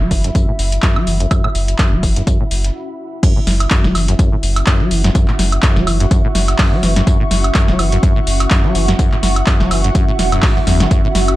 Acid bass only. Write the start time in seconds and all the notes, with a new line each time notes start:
0.00 F#3
0.11 E3
0.24 F#2
0.35 F#2
0.48 A2
0.83 F#2
0.96 F#3
1.07 E3
1.20 F#2
1.31 F#2
1.44 A2
1.79 F#2
1.92 F#3
2.03 E3
2.16 F#2
2.27 F#2
2.40 A2
3.23 F#2
3.36 A2
3.71 F#2
3.84 F#3
3.95 E3
4.08 F#2
4.19 F#2
4.32 A2
4.67 F#2
4.80 F#3
4.91 E3
5.04 F#2
5.15 F#2
5.28 A2
5.63 F#2
5.76 F#3
5.87 E3
6.00 F#2
6.11 F#2
6.24 A2
6.59 F#2
6.72 F#3
6.83 E3
6.96 F#2
7.07 F#2
7.20 A2
7.55 F#2
7.68 F#3
7.79 E3
7.92 F#2
8.03 F#2
8.16 A2
8.51 F#2
8.64 F#3
8.75 E3
8.88 F#2
8.99 F#2
9.12 A2
9.47 F#2
9.60 F#3
9.71 E3
9.84 F#2
9.95 F#2
10.08 A2
10.32 F#2
10.43 G#2
10.56 F#2
10.67 E2
10.80 E3
10.91 F#2
11.04 A2